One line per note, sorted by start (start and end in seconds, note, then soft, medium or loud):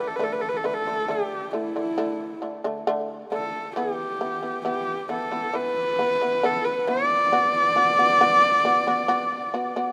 0.00 0.11 D3 medium
0.00 0.11 A3 medium
0.08 0.17 A4 medium
0.16 0.56 D3 medium
0.16 0.25 B4 medium
0.20 0.56 A3 medium
0.20 0.34 A4 medium
0.33 0.43 B4 medium
0.41 0.51 A4 medium
0.49 0.58 B4 medium
0.57 0.67 A4 medium
0.64 0.82 D3 medium
0.64 0.82 A3 medium
0.64 0.75 B4 medium
0.74 1.12 A4 medium
0.87 1.05 D3 medium
0.87 1.05 A3 medium
1.08 1.45 D3 medium
1.08 1.45 A3 medium
1.08 1.56 G4 medium
1.53 1.71 D3 medium
1.53 1.72 A3 medium
1.53 2.44 E4 medium
1.76 1.94 D3 medium
1.76 1.94 A3 medium
1.98 2.34 D3 medium
1.98 2.34 A3 medium
2.42 2.60 D3 medium
2.42 2.60 A3 medium
2.64 2.83 D3 medium
2.64 2.83 A3 medium
2.87 3.23 D3 loud
2.87 3.23 A3 loud
3.32 3.68 D3 medium
3.32 3.68 A3 medium
3.32 3.74 A4 medium
3.76 4.12 E3 medium
3.76 4.12 B3 medium
3.76 4.63 G4 medium
4.21 4.39 E3 medium
4.21 4.39 B3 medium
4.43 4.61 E3 medium
4.43 4.61 B3 soft
4.65 5.01 E3 medium
4.65 5.01 B3 medium
4.65 5.08 G4 medium
5.09 5.28 E3 medium
5.09 5.28 B3 medium
5.13 5.57 A4 medium
5.32 5.50 E3 medium
5.32 5.50 B3 medium
5.53 5.90 E3 medium
5.53 5.90 B3 medium
5.53 6.47 B4 loud
5.99 6.17 E3 medium
5.99 6.17 B3 medium
6.22 6.40 E3 medium
6.22 6.40 B3 medium
6.43 6.79 E3 medium
6.43 6.79 B3 medium
6.43 6.66 A4 medium
6.65 6.90 B4 medium
6.87 7.23 E3 medium
6.87 7.24 B3 medium
6.87 9.92 D5 loud
7.32 7.68 B3 medium
7.32 7.68 F#4 medium
7.76 7.94 B3 medium
7.76 7.94 F#4 medium
7.98 8.17 B3 medium
7.98 8.17 F#4 medium
8.21 8.57 B3 medium
8.21 8.57 F#4 loud
8.65 8.83 B3 medium
8.65 8.83 F#4 medium
8.87 9.05 B3 medium
8.87 9.06 F#4 medium
9.08 9.45 B3 loud
9.08 9.45 F#4 loud
9.54 9.72 B3 medium
9.54 9.72 F#4 medium
9.76 9.92 B3 medium
9.76 9.92 F#4 medium